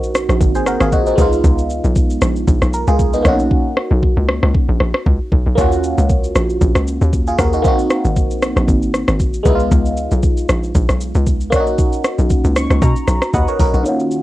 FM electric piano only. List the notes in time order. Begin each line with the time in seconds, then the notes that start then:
Already playing: A#3 C4 D#4 F#4
0.55 G#4 C5
0.67 F#4 A#4
0.81 F4 G#4
0.93 D#4 F#4
1.07 C4 D#4
1.16 G#3 B3 D#4
1.21 F4
2.74 A#4
2.88 F4 G#4
3.14 B3 D#4
3.22 A#3 C#4 D#4
3.28 F#4
5.55 A#3 C#4 F4
5.61 F#4
7.28 F4 G#4
7.39 F#4 A#4
7.53 D#4 F#4
7.62 A#3 C4 D#4
7.68 F#4
9.43 G#3 B3 D#4
9.49 E4
9.55 F4
11.50 A#3 C#4 D4
11.56 F#4
11.60 D#4
12.56 C#6
12.82 A#5
13.34 B4 D#5 F#5
13.48 A#4 C#5
13.60 F#4 A#4
13.74 D#4 F#4
13.83 D#3 A#3 C#4
13.87 F4 F#4